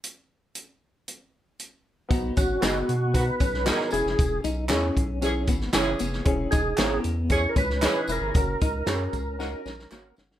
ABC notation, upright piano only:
X:1
M:4/4
L:1/8
Q:1/4=115
K:B
V:1 name="Upright piano"
z8 | [B,DF] z [B,DG] z [B,DF] z [B,DF] [CEG]- | [CEG] z [CEG] z [CEG] z [CEG] z | [CEG] z [CEA] z [CEG] z [CEG] z |
[CFA] z [CFG] z [CFA] z [CFA] z |]